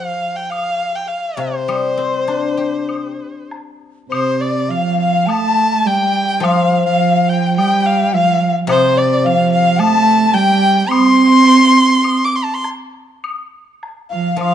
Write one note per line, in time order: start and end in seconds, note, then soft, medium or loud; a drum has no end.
0.00 1.09 F3 soft
0.00 0.38 F5 medium
0.36 0.52 G5 medium
0.50 0.97 F5 medium
0.50 high woodblock soft
0.95 1.09 G5 medium
1.08 1.40 F5 medium
1.37 3.18 C3 medium
1.37 3.50 C5 medium
1.68 2.88 G3 soft
1.68 high woodblock medium
1.97 3.19 C4 soft
2.28 3.50 D4 soft
2.28 low woodblock soft
2.57 3.81 G4 soft
2.89 high woodblock soft
3.51 low woodblock soft
4.09 4.70 C3 medium
4.09 4.42 C5 medium
4.09 high woodblock medium
4.40 4.71 D5 medium
4.40 4.72 D5 medium
4.69 5.28 F3 medium
4.69 5.28 F5 medium
4.69 4.99 F5 medium
5.00 5.31 F5 medium
5.26 5.87 A3 medium
5.26 5.70 A5 medium
5.26 5.88 A5 loud
5.26 high woodblock medium
5.70 5.88 A5 medium
5.85 6.45 G3 medium
5.85 6.27 G5 medium
5.85 6.46 G5 loud
6.28 6.45 G5 medium
6.40 8.12 F3 medium
6.40 6.85 F3 medium
6.40 6.84 F5 medium
6.40 high woodblock medium
6.44 6.85 F5 loud
6.85 7.59 F3 medium
6.85 7.30 F5 medium
7.29 7.57 G5 medium
7.29 7.56 G5 loud
7.56 8.15 G3 medium
7.56 7.87 G5 loud
7.56 8.15 G5 medium
7.56 high woodblock soft
7.86 8.13 F5 medium
8.13 8.55 F3 medium
8.13 8.55 F5 medium
8.13 8.52 F5 loud
8.67 10.34 C3 medium
8.67 9.26 C3 medium
8.67 8.98 C5 medium
8.67 8.99 C5 loud
8.67 high woodblock medium
8.97 9.26 D5 medium
8.97 9.27 D5 medium
9.24 9.80 F3 medium
9.24 9.52 F5 medium
9.24 9.52 F5 loud
9.52 9.81 F5 loud
9.52 9.83 F5 loud
9.79 10.35 A3 loud
9.79 10.35 A5 loud
9.79 10.22 A5 loud
9.79 high woodblock medium
10.23 10.38 A5 medium
10.34 10.89 G3 loud
10.34 10.91 G5 loud
10.34 10.78 G5 medium
10.89 12.21 C4 medium
10.89 11.06 B5 loud
10.89 12.26 C6 loud
10.89 high woodblock medium
11.06 12.22 C6 loud
12.04 high woodblock medium
12.25 12.37 D6 loud
12.35 12.45 C6 medium
12.44 12.55 A5 medium
12.54 12.64 C6 medium
12.64 low woodblock soft
13.24 high woodblock medium
13.83 low woodblock soft
14.10 14.38 F3 medium
14.10 14.37 F5 medium
14.10 14.38 F5 medium
14.36 14.54 F3 medium
14.36 14.54 F5 medium
14.41 14.54 F5 medium
14.41 high woodblock soft